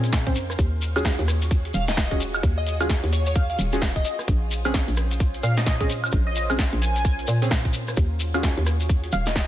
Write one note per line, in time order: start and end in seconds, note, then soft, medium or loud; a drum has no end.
0.00 0.37 A#2 loud
0.00 0.23 C4 medium
0.00 0.23 C#4 medium
0.00 0.55 D#4 medium
0.00 0.23 G#4 medium
0.00 0.57 A#4 medium
0.00 0.55 C5 medium
0.00 0.55 F5 medium
0.00 closed hi-hat medium
0.04 shekere medium
0.13 kick loud
0.13 snare loud
0.13 shekere soft
0.27 0.35 C4 medium
0.27 0.35 C#4 medium
0.27 0.35 C5 medium
0.27 kick medium
0.27 closed hi-hat medium
0.35 0.56 F2 loud
0.35 open hi-hat loud
0.35 shekere medium
0.50 cross-stick soft
0.50 shekere medium
0.59 1.15 D#2 loud
0.59 9.47 F4 medium
0.59 4.01 F#4 medium
0.59 5.85 G#4 medium
0.59 4.01 C#5 medium
0.59 kick loud
0.59 closed hi-hat medium
0.59 shekere soft
0.82 open hi-hat loud
0.82 shekere loud
0.96 1.12 C#4 loud
0.96 1.12 F4 medium
0.96 1.12 F#4 medium
0.96 1.12 G#4 loud
0.96 high woodblock medium
0.96 shekere medium
1.05 kick loud
1.05 snare loud
1.05 shekere soft
1.19 1.72 D#2 loud
1.19 closed hi-hat soft
1.28 cross-stick medium
1.28 open hi-hat loud
1.28 shekere loud
1.42 closed hi-hat medium
1.42 shekere medium
1.51 kick loud
1.51 closed hi-hat medium
1.51 shekere soft
1.65 closed hi-hat soft
1.74 2.41 D#1 loud
1.74 1.85 F5 medium
1.74 open hi-hat loud
1.74 shekere medium
1.88 2.20 D#5 loud
1.88 snare medium
1.88 closed hi-hat medium
1.88 shekere medium
1.97 kick loud
1.97 snare loud
1.97 shekere soft
2.11 2.20 C#4 medium
2.11 2.20 F4 medium
2.11 2.20 F#4 medium
2.11 2.20 G#4 medium
2.11 kick medium
2.11 closed hi-hat medium
2.20 open hi-hat loud
2.20 shekere medium
2.34 high woodblock medium
2.34 shekere medium
2.43 3.00 D#2 loud
2.43 kick loud
2.43 closed hi-hat medium
2.43 shekere soft
2.58 2.63 D#5 medium
2.67 2.76 D#5 medium
2.67 open hi-hat loud
2.67 shekere medium
2.80 2.89 C#4 medium
2.80 2.89 F4 medium
2.80 2.89 F#4 medium
2.80 2.89 G#4 loud
2.80 high woodblock medium
2.80 shekere medium
2.89 kick loud
2.89 snare loud
2.89 shekere soft
3.04 3.56 D#2 loud
3.04 closed hi-hat soft
3.13 3.22 C#5 medium
3.13 open hi-hat loud
3.13 shekere medium
3.26 3.32 C#5 medium
3.26 closed hi-hat medium
3.26 shekere medium
3.35 3.45 F5 medium
3.35 kick loud
3.35 closed hi-hat medium
3.35 shekere soft
3.50 3.55 F5 medium
3.50 closed hi-hat soft
3.59 4.03 D#1 loud
3.59 open hi-hat loud
3.59 shekere loud
3.73 3.81 C#4 loud
3.73 3.81 F4 medium
3.73 3.81 F#4 medium
3.73 3.81 G#4 loud
3.73 closed hi-hat medium
3.73 shekere medium
3.82 kick loud
3.82 snare loud
3.82 shekere soft
3.96 4.02 D#5 medium
3.96 kick medium
3.96 closed hi-hat medium
4.05 7.93 C#4 medium
4.05 7.93 C5 medium
4.05 4.14 D#5 medium
4.05 open hi-hat loud
4.05 shekere medium
4.19 cross-stick soft
4.19 shekere soft
4.28 4.84 A#1 loud
4.28 kick loud
4.28 closed hi-hat medium
4.28 shekere soft
4.51 open hi-hat loud
4.51 shekere medium
4.65 4.81 C4 loud
4.65 4.81 C#4 medium
4.65 4.81 G#4 loud
4.65 high woodblock medium
4.65 shekere medium
4.74 kick loud
4.74 snare loud
4.74 shekere soft
4.88 5.41 A#1 loud
4.88 closed hi-hat soft
4.96 cross-stick medium
4.96 open hi-hat loud
4.96 shekere medium
5.11 closed hi-hat medium
5.11 shekere medium
5.20 kick loud
5.20 closed hi-hat medium
5.20 shekere soft
5.34 closed hi-hat soft
5.43 6.10 A#2 loud
5.43 5.55 F5 loud
5.43 open hi-hat loud
5.43 shekere medium
5.57 5.89 D#5 loud
5.57 snare medium
5.57 closed hi-hat medium
5.57 shekere medium
5.66 kick loud
5.66 snare loud
5.66 shekere soft
5.80 5.89 C4 medium
5.80 5.89 C#4 medium
5.80 5.89 G#4 medium
5.80 kick medium
5.80 closed hi-hat medium
5.89 7.95 A#4 medium
5.89 open hi-hat loud
5.89 shekere medium
6.04 high woodblock medium
6.04 shekere medium
6.12 6.69 A#1 loud
6.12 kick loud
6.12 closed hi-hat medium
6.12 shekere soft
6.27 6.32 D#5 medium
6.36 6.45 D#5 medium
6.36 open hi-hat loud
6.36 shekere medium
6.50 6.58 C4 medium
6.50 6.58 C#4 medium
6.50 6.58 G#4 loud
6.50 high woodblock medium
6.50 shekere medium
6.59 kick loud
6.59 snare loud
6.59 shekere soft
6.73 7.26 A#1 loud
6.73 closed hi-hat soft
6.82 7.47 G#5 loud
6.82 open hi-hat loud
6.82 shekere medium
6.96 closed hi-hat medium
6.96 shekere soft
7.05 kick loud
7.05 closed hi-hat medium
7.05 shekere soft
7.19 closed hi-hat soft
7.27 7.95 A#2 loud
7.27 open hi-hat loud
7.27 shekere medium
7.42 7.50 C4 medium
7.42 7.51 C#4 medium
7.42 7.51 G#4 loud
7.42 closed hi-hat medium
7.42 shekere soft
7.51 kick loud
7.51 snare loud
7.51 shekere soft
7.65 kick medium
7.65 closed hi-hat medium
7.73 open hi-hat loud
7.73 shekere medium
7.88 cross-stick soft
7.88 shekere soft
7.97 8.54 D#2 loud
7.97 9.47 F#4 medium
7.97 9.47 G#4 medium
7.97 9.47 C#5 medium
7.97 kick loud
7.97 closed hi-hat medium
7.97 shekere soft
8.20 open hi-hat loud
8.20 shekere loud
8.34 8.50 C#4 medium
8.34 8.51 F4 medium
8.34 8.51 F#4 medium
8.34 8.51 G#4 loud
8.34 high woodblock medium
8.34 shekere medium
8.43 kick loud
8.43 snare loud
8.43 shekere soft
8.57 9.10 D#2 loud
8.57 closed hi-hat soft
8.66 cross-stick medium
8.66 open hi-hat loud
8.66 shekere loud
8.80 closed hi-hat medium
8.80 shekere medium
8.89 kick loud
8.89 closed hi-hat medium
8.89 shekere soft
9.04 closed hi-hat soft
9.12 9.47 D#1 loud
9.12 9.24 F5 loud
9.12 open hi-hat loud
9.12 shekere medium
9.26 9.47 D#5 medium
9.26 snare medium
9.26 closed hi-hat medium
9.26 shekere medium
9.36 kick loud
9.36 snare loud
9.36 shekere soft